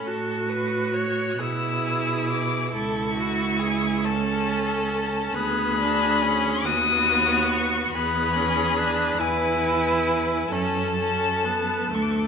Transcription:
0.05 A2 F#4 A4 C#6
0.49 B4
0.94 C#5
1.33 F#6
1.39 B2 E4 G#4 E6
2.30 D6
2.72 C#2 E4 A4 C#6
3.16 F#4
3.59 G#4
4.04 C#4 A4 A5
4.90 A5
5.34 D2 B3 G#4 B5
5.79 D4
6.22 C#4
6.64 D#2 B3 F#4 D#6
7.49 C#6
7.93 E2 B3 G#4 B5
8.36 C#4
8.78 D4
9.19 E2 E4 B4 G#5
10.07 G#5
10.51 F#2 C#4 A4 A5
10.98 C#4
11.44 B3
11.91 D2 A3 A4
11.95 C#6
12.02 D6
12.11 C#6
12.20 D6

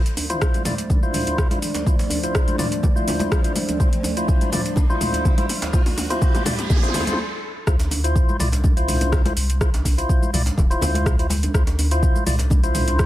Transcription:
Already playing: F3 A3 D4 C5 D5, riser
0.06 closed hi-hat, shaker
0.17 open hi-hat, djembe tone, shaker
0.30 E4 F4 C5, closed hi-hat, mid tom, shaker
0.42 kick, cross-stick, shaker
0.54 closed hi-hat, high conga, shaker
0.65 E4 F4 D5, mid tom, open hi-hat, djembe slap, high conga, shaker
0.78 closed hi-hat, shaker
0.90 kick, mid tom, high conga, djembe tone, shaker
1.03 E4 F4 C5, shaker
1.14 mid tom, open hi-hat, high conga, djembe tone, shaker
1.27 closed hi-hat, djembe tone, shaker
1.38 kick, cross-stick, low conga, shaker
1.51 E4 F4 C5, closed hi-hat, high conga, shaker
1.62 open hi-hat, mid tom, shaker
1.74 closed hi-hat, djembe slap, shaker
1.86 E4 F4 C5, kick, mid tom, shaker
1.99 open hi-hat, djembe slap, shaker
2.10 open hi-hat, djembe tone, shaker
2.23 E4 F4 C5, closed hi-hat, shaker
2.35 kick, cross-stick, shaker
2.48 closed hi-hat, high conga, shaker
2.58 E4 F4 D5, mid tom, open hi-hat, djembe slap, high conga, shaker
2.72 closed hi-hat, shaker
2.83 kick, mid tom, high conga, low conga, shaker
2.96 E4 F4 C5, shaker
3.07 open hi-hat, djembe tone, high conga, low conga, shaker
3.19 closed hi-hat, mid tom, high conga, shaker
3.32 kick, cross-stick, shaker
3.44 E4 F4 C5, closed hi-hat, shaker
3.55 open hi-hat, mid tom, high conga, low conga, shaker
3.69 closed hi-hat, djembe tone, shaker
3.80 E4 F4 C5, kick, mid tom, shaker
3.93 closed hi-hat, shaker
4.03 open hi-hat, mid tom, djembe tone, shaker
4.17 E4 F4 C5, closed hi-hat, shaker
4.28 kick, mid tom, shaker
4.41 closed hi-hat, high conga, shaker
4.52 E4 F4 D5, mid tom, open hi-hat, djembe slap, high conga, shaker
4.66 closed hi-hat, shaker
4.76 kick, mid tom, djembe tone, high conga, shaker
4.90 E4 F4 C5, shaker
5.00 mid tom, open hi-hat, djembe tone, high conga, shaker
5.13 closed hi-hat, djembe tone, shaker
5.25 kick, mid tom, low conga, shaker
5.38 E4 F4 C5, closed hi-hat, high conga, shaker
5.49 open hi-hat, mid tom, shaker
5.62 closed hi-hat, djembe slap, shaker
5.73 E4 F4 C5, kick, mid tom, noise sweep, shaker
5.86 open hi-hat, mid tom, djembe slap, shaker
5.98 open hi-hat, mid tom, djembe tone, shaker
6.10 E4 F4 C5, closed hi-hat, mid tom, shaker
6.22 kick, mid tom, shaker
6.35 closed hi-hat, mid tom, high conga, shaker
6.46 E4 F4 D5, mid tom, open hi-hat, djembe slap, high conga, shaker
6.59 closed hi-hat, mid tom, shaker
6.70 kick, mid tom, high conga, low conga, shaker
6.76 mid tom
6.83 E4 F4 C5, mid tom, shaker
6.89 mid tom
6.94 open hi-hat, mid tom, high conga, djembe tone, low conga, shaker
7.01 mid tom
7.07 E4 F4 C5, closed hi-hat, mid tom, high conga, shaker
7.13 mid tom
7.67 D2 E4 F4 C5, kick, cross-stick, shaker
7.79 closed hi-hat, djembe slap, shaker
7.91 open hi-hat, djembe tone, shaker
8.04 E4 F4 C5, closed hi-hat, shaker
8.16 kick, shaker
8.29 high conga, shaker
8.40 C2 E4 F4 D5, mid tom, open hi-hat, high conga, shaker
8.52 closed hi-hat, djembe slap, shaker
8.64 kick, djembe tone, high conga, shaker
8.77 E4 F4 C5, closed hi-hat, shaker
8.88 mid tom, open hi-hat, high conga, djembe tone, shaker
9.01 closed hi-hat, djembe tone, shaker
9.12 kick, cross-stick, djembe slap, low conga, shaker
9.25 E4 F4 C5, closed hi-hat, high conga
9.37 C2, open hi-hat, shaker
9.50 closed hi-hat, shaker
9.61 E4 F4 C5, kick, cross-stick, shaker
9.74 closed hi-hat, djembe slap, shaker
9.85 kick, open hi-hat, djembe tone, shaker
9.98 E4 F4 C5, closed hi-hat, shaker
10.09 kick, shaker
10.23 high conga, shaker
10.33 C2 E4 F4 D5, mid tom, open hi-hat, high conga, shaker
10.46 closed hi-hat, djembe slap, shaker
10.58 D1, kick, high conga, low conga, shaker
10.70 E4 F4 C5, closed hi-hat, shaker
10.81 D2, open hi-hat, djembe tone, high conga, low conga, shaker
10.94 closed hi-hat, high conga, shaker
11.06 kick, cross-stick, mid tom, shaker
11.19 E4 F4 C5, closed hi-hat
11.30 open hi-hat, high conga, low conga, shaker
11.43 closed hi-hat, djembe tone, shaker
11.54 D2 E4 F4 C5, kick, cross-stick, shaker
11.67 closed hi-hat, djembe slap, shaker
11.79 open hi-hat, djembe tone, shaker
11.91 E4 F4 C5, closed hi-hat, shaker
12.03 kick, shaker
12.16 high conga, shaker
12.26 C2 E4 F4 D5, mid tom, open hi-hat, high conga, shaker
12.39 closed hi-hat, djembe slap, shaker
12.50 kick, djembe tone, high conga, shaker
12.63 E4 F4 C5, closed hi-hat, shaker
12.75 mid tom, open hi-hat, high conga, djembe tone, shaker
12.88 closed hi-hat, djembe tone, shaker
12.99 kick, cross-stick, djembe slap, low conga, shaker

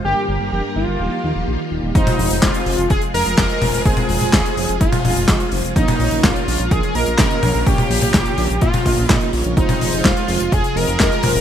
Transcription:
0.04 G1 G2 D3 G3 A#3 D4 G4 A#4
0.28 G1
0.40 G1
0.52 F1 G4
0.76 G1 F4
0.88 G1
1.00 D#1 D#3 F3 A#3 D#4 F4 G4
1.24 D#2
1.36 D#1
1.47 A#1
1.71 D#1
1.83 D#1
1.95 F1 C3 F3 G#3 C4 D#4 F4 G#4 C5, kick, closed hi-hat
2.07 closed hi-hat, high tom
2.19 F1, open hi-hat
2.31 F1, closed hi-hat
2.42 D#1 F4, kick, snare, clap, closed hi-hat
2.54 closed hi-hat
2.66 F1 G#3 C4 F4 C5, open hi-hat
2.78 F1, closed hi-hat
2.90 F1 G#4, kick, closed hi-hat
3.02 closed hi-hat
3.14 F1 G#3 C4 F4 A#4 D#5, open hi-hat
3.26 F1, closed hi-hat
3.37 F1, kick, snare, clap, closed hi-hat
3.50 closed hi-hat
3.62 F1 G#3 C4 F4 C5, open hi-hat, high tom
3.74 F1, closed hi-hat
3.85 F1 G#3 C4 F4 G#4 C5, kick, closed hi-hat
3.97 closed hi-hat, high tom
4.09 F1, open hi-hat
4.21 F1, closed hi-hat, high tom
4.33 D#1, kick, snare, clap, closed hi-hat
4.46 closed hi-hat
4.57 F1 G#3 C4 F4 C5, open hi-hat
4.69 F1, closed hi-hat
4.81 F1 F4, kick, closed hi-hat
4.93 closed hi-hat, high tom
5.05 F1 G#3 C4 F4 D#5, open hi-hat, high tom
5.17 F1, closed hi-hat
5.28 F1, kick, snare, clap, closed hi-hat
5.40 closed hi-hat
5.52 F1 G#3 C4 F4 C5, open hi-hat
5.64 F1, closed hi-hat
5.76 A#1 A#2 C#3 A#3 C#4 D#4 F4 A#4 C#5, kick, closed hi-hat
5.88 closed hi-hat, high tom
6.00 A#1, open hi-hat
6.11 A#1, closed hi-hat
6.24 G#1 F4, kick, snare, clap, closed hi-hat
6.36 closed hi-hat
6.47 A#1 A#2 A#3 C#4 F4 C#5, open hi-hat
6.59 A#1, closed hi-hat
6.71 A#1 G#4, kick, closed hi-hat
6.83 closed hi-hat
6.95 A#1 A#2 A#3 C#4 F4 A#4 D#5, open hi-hat
7.06 A#1, closed hi-hat
7.18 A#1, kick, snare, clap, closed hi-hat
7.31 closed hi-hat
7.43 A#1 A#2 A#3 C#4 F4 C#5, open hi-hat, high tom
7.55 A#1, closed hi-hat
7.66 A#1 A#2 A#3 C#4 F4 G4 C#5, kick, closed hi-hat
7.78 closed hi-hat, high tom
7.90 A#1, open hi-hat
8.02 A#1, closed hi-hat, high tom
8.14 G#1, kick, snare, clap, closed hi-hat
8.26 closed hi-hat
8.38 A#1 A#2 A#3 C#4 F4 C#5, open hi-hat
8.50 A#1, closed hi-hat
8.61 A#2 F4, kick, closed hi-hat
8.74 closed hi-hat, high tom
8.85 A#1 A#2 A#3 C#4 F4 D#5, kick, open hi-hat, high tom
8.98 A#1, closed hi-hat
9.09 A#2 D#4, kick, snare, clap, closed hi-hat
9.21 closed hi-hat
9.33 A#1 A#3 C#4 F4 C#5, open hi-hat
9.44 A#1, closed hi-hat
9.57 F1 C3 F3 G#3 C4 D#4 F4 G#4 C5, kick, closed hi-hat
9.69 closed hi-hat, high tom
9.81 F1, open hi-hat
9.93 F1, closed hi-hat
10.04 D#1 F4, kick, snare, clap, closed hi-hat
10.17 closed hi-hat
10.28 F1 G#3 C4 F4 C5, open hi-hat
10.40 F1, closed hi-hat
10.52 F1 G#4, kick, closed hi-hat
10.64 closed hi-hat
10.76 F1 G#3 C4 F4 A#4 D#5, open hi-hat
10.88 F1, closed hi-hat
11.00 F1, kick, snare, clap, closed hi-hat
11.12 closed hi-hat
11.23 F1 G#3 C4 F4 C5, open hi-hat, high tom
11.35 F1, closed hi-hat

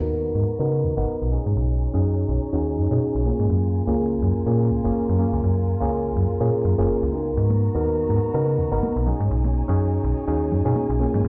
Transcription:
Already playing: B3 F#4 A#5
0.00 D#2 B3 D#4 F#4 A#4
0.35 G#2
0.59 C#3 B3 D#4 F#4 A#4
0.84 D#2
0.97 G#1 B3 D#4 F#4 A#4
1.22 B1
1.31 C#4 D#4 F#4 G#4 C#5 G#5
1.46 G#2
1.56 B1
1.93 F#2 C#4 D#4 F#4 G#4
2.29 B1
2.53 D#2 C#4 D#4 F#4 G#4
2.77 F#2
2.91 B2 C#4 D#4 F#4 G#4
3.15 B1
3.25 A#3 C#4 F4 G#4
3.39 G#2
3.50 F#2 F4 A#4
3.87 C#2 A#3 C#4 F4 G#4
4.22 F#2
4.46 A#2 A#3 C#4 F4 G#4
4.71 C#2
4.84 F#1 A#3 C#4 F4 G#4
5.09 F#2
5.19 A#3 C#4 F4 G#4
5.33 C#2
5.44 F#2
5.81 C#2 A#3 C#4 F4 G#4
6.16 F#2
6.40 A#2 A#3 C#4 F4 G#4
6.65 F#2
6.78 F#1 A#3 C#4 F4 G#4
7.03 C#2
7.12 B3 D#4 F#4 A#4
7.37 G#2 B3 F#4 A#5, maracas
7.50 high conga, maracas
7.74 D#2 B3 D#4 F#4 A#4, maracas
7.85 maracas
7.99 maracas
8.09 G#2, high conga
8.23 maracas
8.34 C#3 B3 D#4 F#4 A#4, maracas
8.47 maracas
8.58 D#2
8.72 G#1 B3 D#4 F#4 A#4, maracas
8.83 high conga, maracas
8.96 B1, maracas
9.06 C#4 D#4 F#4 G#4 C#5 G#5, low conga
9.20 G#2, maracas
9.31 B1, maracas
9.44 high conga, maracas
9.68 F#2 C#4 D#4 F#4 G#4, low conga, maracas
9.80 maracas
9.93 maracas
10.04 B1
10.17 maracas
10.27 D#2 C#4 D#4 F#4 G#4, maracas
10.42 maracas
10.52 F#2, low conga
10.65 B2 C#4 D#4 F#4 G#4, maracas
10.76 high conga, maracas
10.89 B1, maracas
10.99 A#3 C#4 F4 G#4
11.14 G#2, low conga, maracas
11.24 F#2 F4 A#4, maracas

